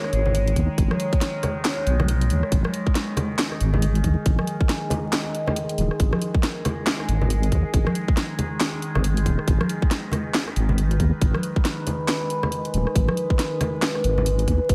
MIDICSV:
0, 0, Header, 1, 4, 480
1, 0, Start_track
1, 0, Key_signature, 5, "minor"
1, 0, Tempo, 434783
1, 861, Time_signature, 4, 2, 24, 8
1, 16283, End_track
2, 0, Start_track
2, 0, Title_t, "Synth drone"
2, 0, Program_c, 0, 95
2, 0, Note_on_c, 0, 51, 84
2, 0, Note_on_c, 0, 56, 79
2, 0, Note_on_c, 0, 73, 93
2, 2765, Note_off_c, 0, 73, 0
2, 2780, Note_on_c, 0, 68, 90
2, 10445, Note_off_c, 0, 68, 0
2, 10460, Note_on_c, 0, 71, 94
2, 16283, Note_off_c, 0, 51, 0
2, 16283, Note_off_c, 0, 56, 0
2, 16283, Note_off_c, 0, 71, 0
2, 16283, End_track
3, 0, Start_track
3, 0, Title_t, "Wobble bass"
3, 0, Program_c, 1, 39
3, 140, Note_on_c, 1, 32, 91
3, 608, Note_off_c, 1, 32, 0
3, 622, Note_on_c, 1, 39, 85
3, 754, Note_off_c, 1, 39, 0
3, 861, Note_on_c, 1, 32, 97
3, 993, Note_off_c, 1, 32, 0
3, 2060, Note_on_c, 1, 35, 100
3, 2541, Note_on_c, 1, 39, 80
3, 2558, Note_off_c, 1, 35, 0
3, 2673, Note_off_c, 1, 39, 0
3, 2780, Note_on_c, 1, 32, 100
3, 2913, Note_off_c, 1, 32, 0
3, 3981, Note_on_c, 1, 32, 93
3, 4449, Note_off_c, 1, 32, 0
3, 4461, Note_on_c, 1, 39, 84
3, 4593, Note_off_c, 1, 39, 0
3, 4701, Note_on_c, 1, 32, 100
3, 4833, Note_off_c, 1, 32, 0
3, 6381, Note_on_c, 1, 27, 94
3, 6513, Note_off_c, 1, 27, 0
3, 6622, Note_on_c, 1, 32, 104
3, 6754, Note_off_c, 1, 32, 0
3, 7820, Note_on_c, 1, 32, 98
3, 8288, Note_off_c, 1, 32, 0
3, 8302, Note_on_c, 1, 39, 86
3, 8434, Note_off_c, 1, 39, 0
3, 8541, Note_on_c, 1, 32, 102
3, 8673, Note_off_c, 1, 32, 0
3, 9885, Note_on_c, 1, 32, 97
3, 10221, Note_on_c, 1, 27, 96
3, 10238, Note_off_c, 1, 32, 0
3, 10353, Note_off_c, 1, 27, 0
3, 10462, Note_on_c, 1, 32, 104
3, 10594, Note_off_c, 1, 32, 0
3, 11661, Note_on_c, 1, 32, 90
3, 12129, Note_off_c, 1, 32, 0
3, 12141, Note_on_c, 1, 39, 85
3, 12273, Note_off_c, 1, 39, 0
3, 12381, Note_on_c, 1, 32, 96
3, 12513, Note_off_c, 1, 32, 0
3, 14063, Note_on_c, 1, 27, 101
3, 14194, Note_off_c, 1, 27, 0
3, 14303, Note_on_c, 1, 32, 101
3, 14434, Note_off_c, 1, 32, 0
3, 15502, Note_on_c, 1, 32, 93
3, 15969, Note_off_c, 1, 32, 0
3, 15982, Note_on_c, 1, 39, 87
3, 16114, Note_off_c, 1, 39, 0
3, 16221, Note_on_c, 1, 32, 102
3, 16283, Note_off_c, 1, 32, 0
3, 16283, End_track
4, 0, Start_track
4, 0, Title_t, "Drums"
4, 45, Note_on_c, 9, 37, 55
4, 141, Note_on_c, 9, 42, 53
4, 156, Note_off_c, 9, 37, 0
4, 252, Note_off_c, 9, 42, 0
4, 282, Note_on_c, 9, 64, 73
4, 382, Note_on_c, 9, 42, 85
4, 392, Note_off_c, 9, 64, 0
4, 493, Note_off_c, 9, 42, 0
4, 525, Note_on_c, 9, 42, 39
4, 621, Note_off_c, 9, 42, 0
4, 621, Note_on_c, 9, 36, 59
4, 621, Note_on_c, 9, 42, 55
4, 732, Note_off_c, 9, 36, 0
4, 732, Note_off_c, 9, 42, 0
4, 861, Note_on_c, 9, 36, 116
4, 862, Note_on_c, 9, 42, 84
4, 972, Note_off_c, 9, 36, 0
4, 972, Note_off_c, 9, 42, 0
4, 1005, Note_on_c, 9, 37, 80
4, 1005, Note_on_c, 9, 63, 66
4, 1101, Note_on_c, 9, 42, 57
4, 1115, Note_off_c, 9, 63, 0
4, 1116, Note_off_c, 9, 37, 0
4, 1212, Note_off_c, 9, 42, 0
4, 1245, Note_on_c, 9, 36, 109
4, 1245, Note_on_c, 9, 42, 37
4, 1340, Note_off_c, 9, 42, 0
4, 1340, Note_on_c, 9, 38, 60
4, 1340, Note_on_c, 9, 42, 82
4, 1355, Note_off_c, 9, 36, 0
4, 1450, Note_off_c, 9, 38, 0
4, 1450, Note_off_c, 9, 42, 0
4, 1579, Note_on_c, 9, 37, 60
4, 1579, Note_on_c, 9, 42, 64
4, 1585, Note_on_c, 9, 64, 82
4, 1690, Note_off_c, 9, 37, 0
4, 1690, Note_off_c, 9, 42, 0
4, 1695, Note_off_c, 9, 64, 0
4, 1820, Note_on_c, 9, 38, 115
4, 1820, Note_on_c, 9, 39, 89
4, 1820, Note_on_c, 9, 42, 81
4, 1931, Note_off_c, 9, 38, 0
4, 1931, Note_off_c, 9, 39, 0
4, 1931, Note_off_c, 9, 42, 0
4, 2060, Note_on_c, 9, 42, 50
4, 2170, Note_off_c, 9, 42, 0
4, 2203, Note_on_c, 9, 37, 80
4, 2204, Note_on_c, 9, 64, 87
4, 2207, Note_on_c, 9, 63, 84
4, 2300, Note_on_c, 9, 42, 88
4, 2314, Note_off_c, 9, 37, 0
4, 2314, Note_off_c, 9, 64, 0
4, 2317, Note_off_c, 9, 63, 0
4, 2411, Note_off_c, 9, 42, 0
4, 2444, Note_on_c, 9, 42, 40
4, 2540, Note_off_c, 9, 42, 0
4, 2540, Note_on_c, 9, 42, 54
4, 2651, Note_off_c, 9, 42, 0
4, 2684, Note_on_c, 9, 37, 50
4, 2780, Note_on_c, 9, 36, 126
4, 2780, Note_on_c, 9, 42, 86
4, 2795, Note_off_c, 9, 37, 0
4, 2891, Note_off_c, 9, 36, 0
4, 2891, Note_off_c, 9, 42, 0
4, 2920, Note_on_c, 9, 63, 69
4, 2925, Note_on_c, 9, 37, 80
4, 3021, Note_on_c, 9, 42, 54
4, 3031, Note_off_c, 9, 63, 0
4, 3035, Note_off_c, 9, 37, 0
4, 3132, Note_off_c, 9, 42, 0
4, 3164, Note_on_c, 9, 36, 103
4, 3261, Note_on_c, 9, 38, 65
4, 3261, Note_on_c, 9, 42, 85
4, 3275, Note_off_c, 9, 36, 0
4, 3372, Note_off_c, 9, 38, 0
4, 3372, Note_off_c, 9, 42, 0
4, 3496, Note_on_c, 9, 64, 86
4, 3501, Note_on_c, 9, 37, 57
4, 3501, Note_on_c, 9, 42, 63
4, 3607, Note_off_c, 9, 64, 0
4, 3611, Note_off_c, 9, 37, 0
4, 3611, Note_off_c, 9, 42, 0
4, 3740, Note_on_c, 9, 38, 116
4, 3740, Note_on_c, 9, 39, 92
4, 3740, Note_on_c, 9, 42, 82
4, 3850, Note_off_c, 9, 38, 0
4, 3850, Note_off_c, 9, 39, 0
4, 3850, Note_off_c, 9, 42, 0
4, 3883, Note_on_c, 9, 37, 51
4, 3980, Note_on_c, 9, 42, 54
4, 3993, Note_off_c, 9, 37, 0
4, 4090, Note_off_c, 9, 42, 0
4, 4123, Note_on_c, 9, 64, 88
4, 4219, Note_on_c, 9, 42, 86
4, 4233, Note_off_c, 9, 64, 0
4, 4330, Note_off_c, 9, 42, 0
4, 4364, Note_on_c, 9, 42, 40
4, 4460, Note_off_c, 9, 42, 0
4, 4460, Note_on_c, 9, 42, 56
4, 4461, Note_on_c, 9, 36, 59
4, 4570, Note_off_c, 9, 42, 0
4, 4572, Note_off_c, 9, 36, 0
4, 4700, Note_on_c, 9, 42, 85
4, 4701, Note_on_c, 9, 36, 127
4, 4810, Note_off_c, 9, 42, 0
4, 4812, Note_off_c, 9, 36, 0
4, 4842, Note_on_c, 9, 63, 61
4, 4844, Note_on_c, 9, 37, 80
4, 4940, Note_on_c, 9, 42, 56
4, 4953, Note_off_c, 9, 63, 0
4, 4954, Note_off_c, 9, 37, 0
4, 5050, Note_off_c, 9, 42, 0
4, 5085, Note_on_c, 9, 36, 112
4, 5181, Note_on_c, 9, 38, 64
4, 5181, Note_on_c, 9, 42, 85
4, 5196, Note_off_c, 9, 36, 0
4, 5291, Note_off_c, 9, 38, 0
4, 5291, Note_off_c, 9, 42, 0
4, 5413, Note_on_c, 9, 64, 92
4, 5421, Note_on_c, 9, 42, 62
4, 5524, Note_off_c, 9, 64, 0
4, 5532, Note_off_c, 9, 42, 0
4, 5662, Note_on_c, 9, 38, 123
4, 5662, Note_on_c, 9, 39, 96
4, 5662, Note_on_c, 9, 42, 81
4, 5772, Note_off_c, 9, 38, 0
4, 5772, Note_off_c, 9, 39, 0
4, 5772, Note_off_c, 9, 42, 0
4, 5901, Note_on_c, 9, 42, 52
4, 6012, Note_off_c, 9, 42, 0
4, 6042, Note_on_c, 9, 64, 87
4, 6045, Note_on_c, 9, 37, 71
4, 6142, Note_on_c, 9, 42, 81
4, 6153, Note_off_c, 9, 64, 0
4, 6156, Note_off_c, 9, 37, 0
4, 6252, Note_off_c, 9, 42, 0
4, 6286, Note_on_c, 9, 42, 37
4, 6381, Note_off_c, 9, 42, 0
4, 6381, Note_on_c, 9, 42, 54
4, 6492, Note_off_c, 9, 42, 0
4, 6525, Note_on_c, 9, 37, 49
4, 6621, Note_on_c, 9, 42, 79
4, 6622, Note_on_c, 9, 36, 127
4, 6636, Note_off_c, 9, 37, 0
4, 6731, Note_off_c, 9, 42, 0
4, 6732, Note_off_c, 9, 36, 0
4, 6763, Note_on_c, 9, 63, 70
4, 6765, Note_on_c, 9, 37, 81
4, 6862, Note_on_c, 9, 42, 51
4, 6873, Note_off_c, 9, 63, 0
4, 6875, Note_off_c, 9, 37, 0
4, 6973, Note_off_c, 9, 42, 0
4, 7005, Note_on_c, 9, 36, 115
4, 7102, Note_on_c, 9, 38, 67
4, 7102, Note_on_c, 9, 42, 82
4, 7116, Note_off_c, 9, 36, 0
4, 7212, Note_off_c, 9, 38, 0
4, 7212, Note_off_c, 9, 42, 0
4, 7343, Note_on_c, 9, 37, 60
4, 7343, Note_on_c, 9, 42, 59
4, 7348, Note_on_c, 9, 64, 89
4, 7453, Note_off_c, 9, 37, 0
4, 7453, Note_off_c, 9, 42, 0
4, 7458, Note_off_c, 9, 64, 0
4, 7582, Note_on_c, 9, 38, 125
4, 7582, Note_on_c, 9, 39, 91
4, 7582, Note_on_c, 9, 42, 75
4, 7692, Note_off_c, 9, 38, 0
4, 7692, Note_off_c, 9, 39, 0
4, 7692, Note_off_c, 9, 42, 0
4, 7726, Note_on_c, 9, 37, 52
4, 7823, Note_on_c, 9, 42, 50
4, 7837, Note_off_c, 9, 37, 0
4, 7933, Note_off_c, 9, 42, 0
4, 7965, Note_on_c, 9, 64, 85
4, 8061, Note_on_c, 9, 42, 79
4, 8075, Note_off_c, 9, 64, 0
4, 8172, Note_off_c, 9, 42, 0
4, 8205, Note_on_c, 9, 42, 37
4, 8301, Note_off_c, 9, 42, 0
4, 8301, Note_on_c, 9, 42, 51
4, 8302, Note_on_c, 9, 36, 66
4, 8411, Note_off_c, 9, 42, 0
4, 8412, Note_off_c, 9, 36, 0
4, 8541, Note_on_c, 9, 36, 127
4, 8541, Note_on_c, 9, 42, 80
4, 8651, Note_off_c, 9, 42, 0
4, 8652, Note_off_c, 9, 36, 0
4, 8684, Note_on_c, 9, 37, 84
4, 8686, Note_on_c, 9, 63, 72
4, 8780, Note_on_c, 9, 42, 51
4, 8795, Note_off_c, 9, 37, 0
4, 8797, Note_off_c, 9, 63, 0
4, 8890, Note_off_c, 9, 42, 0
4, 8925, Note_on_c, 9, 36, 109
4, 9019, Note_on_c, 9, 38, 65
4, 9019, Note_on_c, 9, 42, 81
4, 9035, Note_off_c, 9, 36, 0
4, 9130, Note_off_c, 9, 38, 0
4, 9130, Note_off_c, 9, 42, 0
4, 9259, Note_on_c, 9, 64, 73
4, 9260, Note_on_c, 9, 42, 56
4, 9370, Note_off_c, 9, 42, 0
4, 9370, Note_off_c, 9, 64, 0
4, 9500, Note_on_c, 9, 38, 117
4, 9500, Note_on_c, 9, 39, 83
4, 9500, Note_on_c, 9, 42, 73
4, 9610, Note_off_c, 9, 38, 0
4, 9610, Note_off_c, 9, 39, 0
4, 9610, Note_off_c, 9, 42, 0
4, 9741, Note_on_c, 9, 42, 49
4, 9851, Note_off_c, 9, 42, 0
4, 9884, Note_on_c, 9, 64, 88
4, 9885, Note_on_c, 9, 37, 83
4, 9981, Note_on_c, 9, 42, 77
4, 9995, Note_off_c, 9, 37, 0
4, 9995, Note_off_c, 9, 64, 0
4, 10091, Note_off_c, 9, 42, 0
4, 10125, Note_on_c, 9, 42, 36
4, 10221, Note_on_c, 9, 36, 65
4, 10222, Note_off_c, 9, 42, 0
4, 10222, Note_on_c, 9, 42, 52
4, 10332, Note_off_c, 9, 36, 0
4, 10332, Note_off_c, 9, 42, 0
4, 10364, Note_on_c, 9, 37, 53
4, 10461, Note_on_c, 9, 36, 125
4, 10462, Note_on_c, 9, 42, 79
4, 10475, Note_off_c, 9, 37, 0
4, 10572, Note_off_c, 9, 36, 0
4, 10572, Note_off_c, 9, 42, 0
4, 10606, Note_on_c, 9, 37, 87
4, 10607, Note_on_c, 9, 63, 67
4, 10703, Note_on_c, 9, 42, 50
4, 10716, Note_off_c, 9, 37, 0
4, 10717, Note_off_c, 9, 63, 0
4, 10813, Note_off_c, 9, 42, 0
4, 10845, Note_on_c, 9, 36, 107
4, 10941, Note_on_c, 9, 38, 64
4, 10941, Note_on_c, 9, 42, 76
4, 10955, Note_off_c, 9, 36, 0
4, 11052, Note_off_c, 9, 38, 0
4, 11052, Note_off_c, 9, 42, 0
4, 11168, Note_on_c, 9, 64, 79
4, 11182, Note_on_c, 9, 37, 65
4, 11182, Note_on_c, 9, 42, 59
4, 11278, Note_off_c, 9, 64, 0
4, 11292, Note_off_c, 9, 37, 0
4, 11292, Note_off_c, 9, 42, 0
4, 11421, Note_on_c, 9, 38, 116
4, 11421, Note_on_c, 9, 39, 82
4, 11421, Note_on_c, 9, 42, 76
4, 11531, Note_off_c, 9, 38, 0
4, 11531, Note_off_c, 9, 39, 0
4, 11531, Note_off_c, 9, 42, 0
4, 11565, Note_on_c, 9, 37, 55
4, 11661, Note_on_c, 9, 42, 50
4, 11675, Note_off_c, 9, 37, 0
4, 11771, Note_off_c, 9, 42, 0
4, 11801, Note_on_c, 9, 64, 78
4, 11901, Note_on_c, 9, 42, 81
4, 11911, Note_off_c, 9, 64, 0
4, 12011, Note_off_c, 9, 42, 0
4, 12044, Note_on_c, 9, 42, 37
4, 12141, Note_off_c, 9, 42, 0
4, 12141, Note_on_c, 9, 36, 64
4, 12141, Note_on_c, 9, 42, 53
4, 12252, Note_off_c, 9, 36, 0
4, 12252, Note_off_c, 9, 42, 0
4, 12381, Note_on_c, 9, 36, 127
4, 12381, Note_on_c, 9, 42, 78
4, 12491, Note_off_c, 9, 42, 0
4, 12492, Note_off_c, 9, 36, 0
4, 12525, Note_on_c, 9, 37, 86
4, 12533, Note_on_c, 9, 63, 63
4, 12621, Note_on_c, 9, 42, 51
4, 12635, Note_off_c, 9, 37, 0
4, 12644, Note_off_c, 9, 63, 0
4, 12731, Note_off_c, 9, 42, 0
4, 12765, Note_on_c, 9, 36, 99
4, 12861, Note_on_c, 9, 38, 61
4, 12861, Note_on_c, 9, 42, 84
4, 12875, Note_off_c, 9, 36, 0
4, 12971, Note_off_c, 9, 38, 0
4, 12971, Note_off_c, 9, 42, 0
4, 13101, Note_on_c, 9, 42, 58
4, 13104, Note_on_c, 9, 64, 77
4, 13212, Note_off_c, 9, 42, 0
4, 13214, Note_off_c, 9, 64, 0
4, 13341, Note_on_c, 9, 38, 113
4, 13341, Note_on_c, 9, 39, 82
4, 13341, Note_on_c, 9, 42, 77
4, 13451, Note_off_c, 9, 38, 0
4, 13451, Note_off_c, 9, 39, 0
4, 13451, Note_off_c, 9, 42, 0
4, 13581, Note_on_c, 9, 42, 49
4, 13691, Note_off_c, 9, 42, 0
4, 13724, Note_on_c, 9, 64, 82
4, 13725, Note_on_c, 9, 37, 86
4, 13821, Note_on_c, 9, 42, 80
4, 13834, Note_off_c, 9, 64, 0
4, 13835, Note_off_c, 9, 37, 0
4, 13932, Note_off_c, 9, 42, 0
4, 13965, Note_on_c, 9, 42, 39
4, 14062, Note_off_c, 9, 42, 0
4, 14062, Note_on_c, 9, 42, 53
4, 14172, Note_off_c, 9, 42, 0
4, 14206, Note_on_c, 9, 37, 57
4, 14302, Note_on_c, 9, 36, 119
4, 14303, Note_on_c, 9, 42, 82
4, 14317, Note_off_c, 9, 37, 0
4, 14412, Note_off_c, 9, 36, 0
4, 14413, Note_off_c, 9, 42, 0
4, 14441, Note_on_c, 9, 63, 63
4, 14446, Note_on_c, 9, 37, 84
4, 14542, Note_on_c, 9, 42, 53
4, 14552, Note_off_c, 9, 63, 0
4, 14556, Note_off_c, 9, 37, 0
4, 14653, Note_off_c, 9, 42, 0
4, 14686, Note_on_c, 9, 36, 99
4, 14783, Note_on_c, 9, 38, 61
4, 14783, Note_on_c, 9, 42, 82
4, 14796, Note_off_c, 9, 36, 0
4, 14893, Note_off_c, 9, 38, 0
4, 14893, Note_off_c, 9, 42, 0
4, 15021, Note_on_c, 9, 64, 85
4, 15023, Note_on_c, 9, 37, 63
4, 15023, Note_on_c, 9, 42, 64
4, 15132, Note_off_c, 9, 64, 0
4, 15133, Note_off_c, 9, 37, 0
4, 15133, Note_off_c, 9, 42, 0
4, 15261, Note_on_c, 9, 38, 117
4, 15261, Note_on_c, 9, 39, 85
4, 15261, Note_on_c, 9, 42, 84
4, 15372, Note_off_c, 9, 38, 0
4, 15372, Note_off_c, 9, 39, 0
4, 15372, Note_off_c, 9, 42, 0
4, 15405, Note_on_c, 9, 37, 55
4, 15502, Note_on_c, 9, 42, 53
4, 15515, Note_off_c, 9, 37, 0
4, 15612, Note_off_c, 9, 42, 0
4, 15652, Note_on_c, 9, 64, 77
4, 15743, Note_on_c, 9, 42, 87
4, 15762, Note_off_c, 9, 64, 0
4, 15853, Note_off_c, 9, 42, 0
4, 15886, Note_on_c, 9, 42, 38
4, 15982, Note_off_c, 9, 42, 0
4, 15982, Note_on_c, 9, 36, 60
4, 15982, Note_on_c, 9, 42, 55
4, 16092, Note_off_c, 9, 36, 0
4, 16093, Note_off_c, 9, 42, 0
4, 16221, Note_on_c, 9, 42, 86
4, 16222, Note_on_c, 9, 36, 123
4, 16283, Note_off_c, 9, 36, 0
4, 16283, Note_off_c, 9, 42, 0
4, 16283, End_track
0, 0, End_of_file